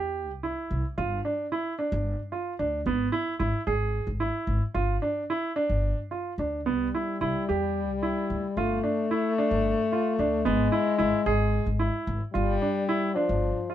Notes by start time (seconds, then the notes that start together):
Already playing: E2 G4
0.29 C2
0.43 E4
0.71 C2
0.98 G1 F4
1.25 D4
1.52 E4
1.79 D4
1.92 G1
2.32 F4
2.59 D2 D4
2.86 G#1 B3
3.12 E4
3.39 G#1 E4
3.67 G#1 G#4
4.07 G#1
4.20 E4
4.47 G#1
4.74 G1 F4
5.02 D4
5.30 E4
5.56 D4
5.70 G1
6.11 F4
6.38 D2 D4
6.66 C2 G3 B3
6.95 E4
7.21 C2 E4
7.49 E2 G4
7.89 C2
8.03 E4
8.30 D2
8.57 G1 A3 F4
8.84 D4
9.11 E4
9.38 D4
9.51 G1
9.92 F4
10.19 D2 D4
10.45 G#1 G#3 B3
10.72 E4
10.98 G#1 E4
11.26 G#1 G#4
11.66 G#1
11.79 E4
12.07 G#1
12.33 G1 G3 F4
12.62 D4
12.89 E4
13.15 F3 D4
13.29 G1
13.70 F4